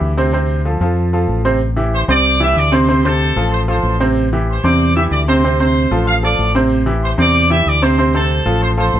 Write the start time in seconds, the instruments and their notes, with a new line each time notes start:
Already playing: grand piano E3 E4 G4
0.01 fingered electric bass D2
0.17 grand piano C3 C4 C5
0.33 grand piano C3 C4 C5
0.65 grand piano F3 F4 A4
0.80 fingered electric bass F2, grand piano F3 F4 A4
1.13 grand piano F3 F4 A4
1.28 fingered electric bass A1
1.45 grand piano C3 C4 C5
1.76 grand piano E3 E4 G4
1.94 trumpet section C5 C6
2.08 fingered electric bass C2, grand piano C3 C4 C5, trumpet section D5 D6
2.40 grand piano E3 E4 G4, trumpet section E5 E6
2.56 fingered electric bass D2, trumpet section D5 D6
2.72 grand piano C3 C4 C5, trumpet section C5 C6
2.88 grand piano C3 C4 C5
3.05 grand piano C3 C4 C5, trumpet section A4 A5
3.36 fingered electric bass A1, grand piano F3 F4 A4
3.52 trumpet section C5 C6
3.68 grand piano F3 F4 A4, trumpet section C5 C6
3.83 fingered electric bass A1
4.00 grand piano C3 C4 C5
4.33 grand piano E3 E4 G4
4.50 trumpet section C5 C6
4.63 fingered electric bass E2, grand piano C3 C4 C5, trumpet section D5 D6
4.96 grand piano E3 E4 G4, trumpet section E5 E6
5.11 fingered electric bass D2, trumpet section D5 D6
5.28 grand piano C3 C4 C5, trumpet section C5 C6
5.44 grand piano C3 C4 C5
5.59 grand piano C3 C4 C5, trumpet section C5 C6
5.91 fingered electric bass A1, grand piano F3 F4 A4
6.07 trumpet section F5
6.23 grand piano F3 F4 A4, trumpet section D5 D6
6.38 fingered electric bass A1
6.55 grand piano C3 C4 C5
6.86 grand piano E3 E4 G4
7.04 trumpet section C5 C6
7.18 fingered electric bass E2, grand piano C3 C4 C5, trumpet section D5 D6
7.50 grand piano E3 E4 G4, trumpet section E5 E6
7.66 fingered electric bass D2, trumpet section D5 D6
7.82 grand piano C3 C4 C5, trumpet section C5 C6
7.98 grand piano C3 C4 C5
8.14 grand piano C3 C4 C5, trumpet section A4 A5
8.45 fingered electric bass A1, grand piano F3 F4 A4
8.62 trumpet section C5 C6
8.77 grand piano F3 F4 A4, trumpet section C5 C6
8.93 fingered electric bass A1